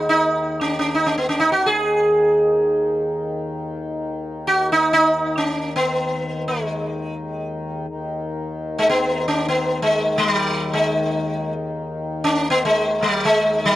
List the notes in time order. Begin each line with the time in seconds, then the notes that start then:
Already playing: D#2 D#3
0.09 D#4
0.61 C#4
0.79 C#4
0.95 D#4
1.06 C#4
1.18 B3
1.29 C#4
1.40 D#4
1.52 F#4
1.66 G#4
4.47 F#4
4.72 D#4
4.93 D#4
5.38 C#4
5.76 B3
6.48 G#3
7.88 D#2 D#3
8.79 G#3
8.89 B3
9.28 C#4
9.48 B3
9.82 G#3
10.18 G3
10.34 F#3
10.73 G#3
12.24 C#4
12.50 B3
12.65 G#3
13.03 F#3
13.25 G#3
13.65 F#3